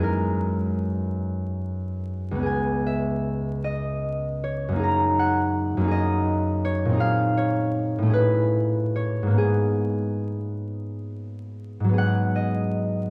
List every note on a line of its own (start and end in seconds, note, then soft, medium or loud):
0.00 2.43 F#2 soft
0.00 3.82 G#3 soft
0.00 2.38 C#4 soft
0.00 2.42 G#4 soft
0.00 2.51 A#4 medium
2.31 4.78 C#2 soft
2.31 4.80 B3 soft
2.39 6.29 C#4 soft
2.39 4.78 G#4 soft
2.46 6.36 G#5 medium
2.86 4.86 E5 medium
3.64 4.99 D#5 medium
4.44 6.64 C#5 medium
4.69 5.76 F#2 soft
4.69 5.79 A#3 soft
4.76 5.82 D#4 soft
4.76 5.86 G#4 soft
4.84 8.18 A#5 medium
5.19 7.03 F#5 medium
5.77 6.96 F#2 soft
5.77 8.11 A#3 soft
5.84 6.92 D#4 soft
5.84 6.96 G#4 soft
5.91 8.17 D#5 medium
6.65 7.36 C#5 medium
6.85 8.10 A#2 medium
6.85 8.12 C4 soft
6.93 8.14 D#4 soft
6.97 8.09 G#4 soft
6.97 8.17 F5 medium
7.37 8.94 C#5 medium
7.98 9.34 A2 medium
8.03 9.36 A3 soft
8.03 9.38 C#4 soft
8.10 9.37 G#4 soft
8.10 9.55 B4 medium
8.96 9.42 C#5 medium
9.23 11.79 G#2 soft
9.27 11.95 A#3 soft
9.27 11.88 B3 soft
9.38 11.92 G#4 medium
11.80 13.10 G#2 soft
11.84 13.10 F#3 soft
11.89 13.10 B3 soft
11.94 13.10 G#4 soft
11.98 13.10 F#5 medium
12.36 13.10 D#5 medium